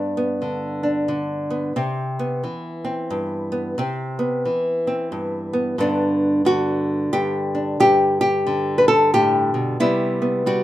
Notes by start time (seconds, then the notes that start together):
Already playing: G2 B3 D4
0.17 B3
0.42 D3
0.83 D4
1.08 D3
1.50 B3
1.76 C3 C4
2.19 B3
2.44 E3
2.85 C4
3.10 G2
3.52 B3
3.78 C3 C4
4.19 B3
4.45 E3
4.87 C4
5.12 G2
5.53 B3
5.78 G2 D3 B3 D4
6.45 D3 F#4
7.13 G2 G4
7.55 D4
7.80 G2 G4
8.21 G4
8.47 D3
8.78 B4
8.88 A4
9.14 A2 G4
9.54 B2
9.80 C3 G3 B3 E4
10.22 B3
10.46 G3 F#4